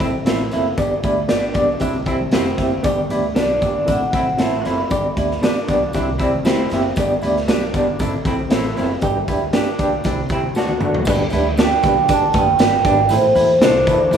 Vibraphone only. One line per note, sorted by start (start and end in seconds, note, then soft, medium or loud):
3.38 3.90 D5 medium
3.91 4.38 F#5 medium
4.43 4.65 E5 medium
4.69 5.41 B5 medium
11.64 12.09 G5 loud
12.13 12.37 A5 loud
12.39 13.09 G5 loud
13.15 14.11 C5 medium